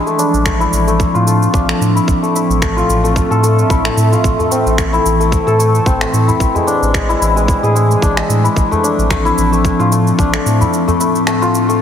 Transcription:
Already playing: ambient pad F3 D4, santur C4 D4 E4 G#4
0.06 santur A3, shaker
0.19 santur D4, shaker
0.33 sub bass A1, shaker
0.45 santur A3, finger snap, kick, shaker
0.54 ambient pad C4
0.60 santur E4, shaker
0.72 sub bass A1, shaker
0.87 santur A3, shaker
1.00 kick, shaker
1.14 sub bass A2, santur F4, shaker
1.26 santur A3, shaker
1.42 shaker
1.54 sub bass A1, santur D4, kick, shaker
1.68 santur A3, finger snap, shaker
1.81 sub bass A2, shaker
1.96 santur E4, shaker
2.08 sub bass A1, ambient pad A2, kick, shaker
2.23 santur A3, shaker
2.35 santur E4, shaker
2.49 sub bass A1, shaker
2.62 santur A3, finger snap, kick, shaker
2.77 santur F4, shaker
2.89 sub bass A1, shaker
3.04 santur A3, ambient pad E5, shaker
3.16 kick, shaker
3.31 sub bass A2, santur A4, shaker
3.43 santur A3, shaker
3.59 shaker
3.70 sub bass A1, santur E4, kick, shaker
3.85 santur A3, finger snap, shaker
3.97 sub bass A2, shaker
4.12 santur F4, shaker
4.24 sub bass A1, kick, shaker
4.39 ambient pad E3, santur A3, udu, shaker
4.51 santur C4, shaker
4.66 sub bass A1, shaker
4.78 santur A3, finger snap, kick, shaker
4.93 santur E4, shaker
5.05 sub bass A1, shaker
5.20 santur A3, shaker
5.32 kick, shaker
5.47 sub bass A2, santur A4, shaker
5.59 santur A3, shaker
5.75 shaker
5.86 sub bass A1, santur C4, kick, shaker
6.01 santur A3, finger snap, shaker
6.13 sub bass A2, shaker
6.28 santur E4, udu, shaker
6.40 sub bass A1, kick, shaker
6.55 santur G#3, ambient pad G#3, udu, shaker
6.67 santur D4, shaker
6.82 sub bass A1, shaker
6.94 finger snap, kick, shaker
7.09 santur E4, shaker
7.20 sub bass A1, ambient pad D4, shaker
7.36 santur G#3, shaker
7.48 kick, shaker
7.63 sub bass A2, santur G#4, shaker
7.75 santur G#3, shaker
7.91 shaker
8.02 sub bass A1, santur D4, kick, shaker
8.17 santur G#3, finger snap, shaker
8.29 sub bass A2, shaker
8.44 santur E4, shaker
8.56 sub bass A1, ambient pad F3, kick, shaker
8.67 santur A3, ambient pad C4
8.72 udu, shaker
8.83 santur D4, shaker
8.98 sub bass A1, shaker
9.10 santur A3, finger snap, kick, shaker
9.25 santur E4, shaker
9.38 sub bass A1, shaker
9.52 santur A3, shaker
9.65 kick, shaker
9.79 sub bass A2, santur F4, shaker
9.92 santur A3, shaker
10.07 shaker
10.19 sub bass A1, santur D4, kick, shaker
10.33 santur A3, finger snap, shaker
10.46 sub bass A2, shaker
10.61 santur E4, udu, shaker
10.73 ambient pad A2, shaker
10.88 santur A3, udu, shaker
11.00 santur E4, shaker
11.15 shaker
11.27 santur A3, finger snap, shaker
11.42 santur F4, shaker
11.55 shaker
11.69 santur A3, ambient pad E5, shaker

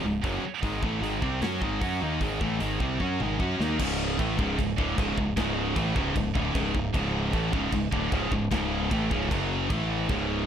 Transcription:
0.04 fingered electric bass C#1, distorted electric guitar C#2 G#2
0.23 fingered electric bass F#1, distorted electric guitar F#2 C#3 F#3, kick, open hi-hat
0.43 muted fingered electric bass stroke, muted distorted electric guitar stroke, muted overdriven electric guitar stroke
0.62 fingered electric bass G#1, distorted electric guitar G#2 D#3 G#3, kick, open hi-hat
0.81 fingered electric bass A1, distorted electric guitar A2 E3 A3, kick
1.01 fingered electric bass G#1, distorted electric guitar G#2 D#3 G#3, open hi-hat
1.21 fingered electric bass C2, distorted electric guitar C3 G3 C4, kick
1.42 fingered electric bass F#2, distorted electric guitar F#3 C#4 F#4, snare, open hi-hat
1.62 fingered electric bass G#1, distorted electric guitar G#2 D#3 G#3, kick
1.81 fingered electric bass F#2, distorted electric guitar F#3 C#4 F#4, kick, open hi-hat
2.01 fingered electric bass D#2, distorted electric guitar D#3 A#3 D#4
2.20 fingered electric bass G#1, distorted electric guitar G#2 D#3 G#3, kick, open hi-hat
2.41 fingered electric bass A1, distorted electric guitar A2 E3 A3, kick
2.59 fingered electric bass G#1, distorted electric guitar G#2 D#3 G#3, open hi-hat
2.80 fingered electric bass C2, distorted electric guitar C3 G3 C4, kick
2.99 fingered electric bass F#2, distorted electric guitar F#3 C#4 F#4, kick
3.19 fingered electric bass G#1, distorted electric guitar G#2 D#3 G#3, mid tom
3.39 fingered electric bass F#2, distorted electric guitar F#3 C#4 F#4, kick
3.58 fingered electric bass D#2, distorted electric guitar D#3 A#3 D#4, snare
3.78 fingered electric bass C#1, distorted electric guitar C#2 G#2 C#3, kick, crash
4.17 fingered electric bass A1, distorted electric guitar A2 E3 A3, kick, crash
4.38 fingered electric bass C#1, distorted electric guitar C#2 G#2 C#3, kick
4.58 fingered electric bass C#1, distorted electric guitar C#2 G#2, kick, crash
4.78 fingered electric bass D1, distorted electric guitar D2 A2 D3, kick
4.96 fingered electric bass C#1, distorted electric guitar C#2 G#2 C#3, kick, crash
5.17 fingered electric bass C#1, distorted electric guitar C#2 G#2, kick
5.36 fingered electric bass C#1, distorted electric guitar C#2 G#2 C#3, kick, snare, crash
5.76 fingered electric bass A1, distorted electric guitar A2 E3 A3, kick, crash
5.95 fingered electric bass C#1, distorted electric guitar C#2 G#2 C#3, kick
6.15 fingered electric bass C#1, distorted electric guitar C#2 G#2, kick, crash
6.35 fingered electric bass D1, distorted electric guitar D2 A2 D3, kick
6.53 fingered electric bass C#1, distorted electric guitar C#2 G#2 C#3, kick, crash
6.75 fingered electric bass C#1, distorted electric guitar C#2 G#2, kick
6.93 fingered electric bass C#1, distorted electric guitar C#2 G#2 C#3, kick, crash
7.32 fingered electric bass A1, distorted electric guitar A2 E3 A3, kick, crash
7.52 fingered electric bass C#1, distorted electric guitar C#2 G#2 C#3, kick
7.71 fingered electric bass C#1, distorted electric guitar C#2 G#2, kick, crash
7.91 fingered electric bass D1, distorted electric guitar D2 A2 D3, kick
8.12 fingered electric bass C#1, distorted electric guitar C#2 G#2 C#3, kick, crash
8.31 fingered electric bass C#1, distorted electric guitar C#2 G#2, kick
8.51 fingered electric bass C#1, distorted electric guitar C#2 G#2 C#3, kick, snare, crash
8.90 fingered electric bass A1, distorted electric guitar A2 E3 A3, kick, crash
9.11 fingered electric bass C#1, distorted electric guitar C#2 G#2 C#3, kick
9.31 fingered electric bass F#1, distorted electric guitar F#2 C#3 F#3, kick, crash
9.70 fingered electric bass A1, distorted electric guitar A2 E3 A3, kick, crash
10.09 fingered electric bass C#1, distorted electric guitar C#2 G#2 C#3, kick, crash

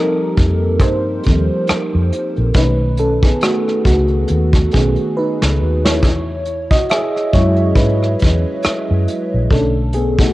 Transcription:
Already playing: fm electric piano F3 G3 A#3 C4 D#4 G4 A4 A#4
0.37 fingered electric bass F2, kick, closed hi-hat
0.80 fingered electric bass G2, fm electric piano D#4 C5, kick, closed hi-hat
1.23 fm electric piano F3 G3 C4, kick, closed hi-hat
1.27 fingered electric bass D#2
1.67 muted fingered electric bass stroke, cross-stick, closed hi-hat
1.95 fingered electric bass F2
2.12 closed hi-hat
2.36 fingered electric bass A#1, closed hi-hat
2.54 fingered electric bass B1, fm electric piano D#3 A3 C#4 D#4 B4, kick, closed hi-hat
2.97 fm electric piano C#4 A4, closed hi-hat
3.23 fm electric piano B3 G#4, kick, closed hi-hat
3.41 fm electric piano A3 F#4, cross-stick, closed hi-hat
3.68 cross-stick
3.85 fingered electric bass C#2, fm electric piano A3 F#4, kick, closed hi-hat
4.08 closed hi-hat
4.28 fingered electric bass D#2, closed hi-hat
4.53 kick, cross-stick
4.71 fingered electric bass B1, fm electric piano D#3 A3 B3 C#4 G#4, kick, closed hi-hat
4.96 closed hi-hat
5.17 fm electric piano D#4 B4
5.42 fingered electric bass C#2, snare
5.61 fingered electric bass D#2
5.85 fm electric piano E4 C#5, snare
6.02 fingered electric bass E2, kick, closed hi-hat
6.45 closed hi-hat
6.71 fm electric piano F#4 D#5, kick
6.89 fm electric piano G#4 E5, cross-stick, closed hi-hat
7.16 cross-stick
7.33 fingered electric bass F#2, fm electric piano F#3 G#3 C#4 E4 C#5, kick, closed hi-hat
7.56 closed hi-hat
7.75 fingered electric bass G#2, fm electric piano E4 B4, kick, closed hi-hat
8.03 cross-stick
8.19 kick, closed hi-hat
8.23 fingered electric bass E2
8.62 muted fingered electric bass stroke, cross-stick, closed hi-hat
8.91 fingered electric bass F#2
9.08 closed hi-hat
9.34 fingered electric bass A#1
9.50 fingered electric bass B1, fm electric piano D3 A3 C#4 D4 A4, kick, closed hi-hat
9.93 fm electric piano B3 G#4, closed hi-hat
10.19 fm electric piano A3 F#4, kick, closed hi-hat

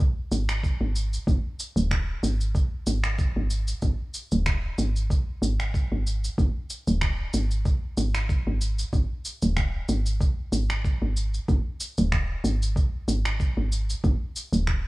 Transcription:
0.00 kick, shaker
0.32 fm bass G#1, shaker
0.49 finger snap, shaker
0.63 kick, shaker
0.81 fm bass G#1
0.96 shaker
1.13 shaker
1.27 fm bass G#1, kick, shaker
1.60 shaker
1.76 fm bass D#1, shaker
1.91 finger snap, kick, shaker
2.23 fm bass G#1, shaker
2.41 shaker
2.55 kick, shaker
2.87 fm bass G#1, shaker
3.04 finger snap, shaker
3.19 kick, shaker
3.36 fm bass G#1
3.50 shaker
3.68 shaker
3.82 fm bass G#1, kick, shaker
4.14 shaker
4.32 fm bass D#1, shaker
4.46 finger snap, kick, shaker
4.78 fm bass G#1, shaker
4.96 shaker
5.10 kick, shaker
5.42 fm bass G#1, shaker
5.60 finger snap, shaker
5.74 kick, shaker
5.92 fm bass G#1
6.07 shaker
6.24 shaker
6.38 fm bass G#1, kick, shaker
6.70 shaker
6.87 fm bass D#1, shaker
7.01 finger snap, kick, shaker
7.34 fm bass G#1, shaker
7.51 shaker
7.66 kick, shaker
7.97 fm bass G#1, shaker
8.15 finger snap, shaker
8.29 kick, shaker
8.47 fm bass G#1
8.61 shaker
8.79 shaker
8.93 fm bass G#1, kick, shaker
9.25 shaker
9.42 fm bass D#1, shaker
9.57 finger snap, kick, shaker
9.89 fm bass G#1, shaker
10.06 shaker
10.21 kick, shaker
10.52 fm bass G#1, shaker
10.70 finger snap, shaker
10.85 kick, shaker
11.02 fm bass G#1
11.17 shaker
11.34 shaker
11.48 fm bass G#1, kick, shaker
11.80 shaker
11.98 fm bass D#1, shaker
12.12 finger snap, kick, shaker
12.44 fm bass G#1, shaker
12.62 shaker
12.76 kick, shaker
13.08 fm bass G#1, shaker
13.25 finger snap, shaker
13.40 kick, shaker
13.57 fm bass G#1
13.72 shaker
13.90 shaker
14.04 fm bass G#1, kick, shaker
14.36 shaker
14.52 fm bass D#1, shaker
14.67 finger snap, kick, shaker

